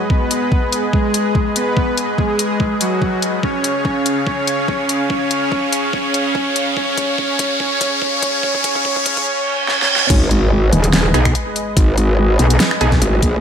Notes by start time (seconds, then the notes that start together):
Already playing: G#3 G#4 B4 D#5, riser
0.10 B3 B4, kick
0.31 closed hi-hat
0.52 kick
0.72 closed hi-hat
0.93 G#3 G#4, kick
1.14 closed hi-hat
1.35 kick
1.56 B3 B4, closed hi-hat
1.77 kick
1.98 closed hi-hat
2.18 G#3 G#4, kick
2.39 closed hi-hat
2.60 kick
2.81 F#3 F#4, closed hi-hat
3.02 kick
3.22 closed hi-hat
3.43 C#3 C#4 C#5 F5, kick
3.64 closed hi-hat
3.85 kick
4.06 closed hi-hat
4.27 C#4 C#5, kick
4.47 closed hi-hat
4.68 kick
4.89 closed hi-hat
5.10 C#4 C#5, kick
5.31 closed hi-hat
5.52 kick
5.72 closed hi-hat
5.93 C#4 C#5, kick
6.14 closed hi-hat
6.35 kick
6.56 closed hi-hat
6.77 C#4 C#5, kick
6.97 kick, closed hi-hat
7.18 C#4 C#5, kick
7.39 kick, closed hi-hat
7.60 C#4 C#5, kick
7.81 kick, closed hi-hat
8.02 C#4 C#5, kick
8.22 kick, closed hi-hat
8.43 C#4 C#5, kick
8.54 kick
8.64 C#4 C#5, kick, closed hi-hat
8.75 kick
8.85 C#4 C#5, kick
8.96 kick
9.06 C#4 C#5, kick, closed hi-hat
9.17 kick, closed hi-hat
9.27 C#4 C#5, reverse cymbal
9.47 C#4 C#5
9.68 C#4 C#5, snare
9.82 snare
9.89 C#4 C#5
9.96 snare
10.10 G#1 G#3 G#4 B4 D#5, kick, closed hi-hat, crash, impact
10.31 closed hi-hat
10.73 D#1, closed hi-hat
10.84 closed hi-hat
10.93 snare, closed hi-hat
11.14 B1 B3 D#4 G#4, finger snap, closed hi-hat
11.25 finger snap, kick, closed hi-hat
11.35 closed hi-hat
11.56 closed hi-hat
11.77 G#1, kick, closed hi-hat
11.98 closed hi-hat
12.39 B1, closed hi-hat
12.50 closed hi-hat
12.60 snare, closed hi-hat
12.71 finger snap
12.81 B1 B3 D#4 G#4, closed hi-hat
12.92 kick, snare, closed hi-hat
13.02 G#1, closed hi-hat
13.22 A#1, kick, closed hi-hat